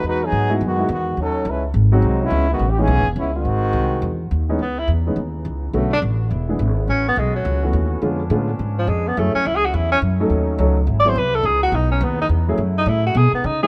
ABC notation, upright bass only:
X:1
M:4/4
L:1/8
Q:"Swing" 1/4=210
K:C#m
V:1 name="Upright bass" clef=bass
E,,2 G,,2 F,,2 E,,2 | D,,2 C,,2 G,,,2 ^B,,,2 | C,,2 A,,,2 (3B,,, G,,, E,,, C,,2 | G,,,2 ^B,,,2 E,,2 D,,2 |
C,,2 E,,2 D,,2 C,,2 | B,,,2 A,,,2 E,,,2 G,,,2 | A,,,2 B,,,2 C,,2 D,,2 | ^E,,2 A,,2 G,,2 E,,2 |
F,, z C,,2 E,,2 F,,2 | D,,2 C,,2 G,,,2 ^B,,,2 | C,,2 B,,,2 D,,2 E,,2 | F,,2 A,,2 B,, z C,2 |]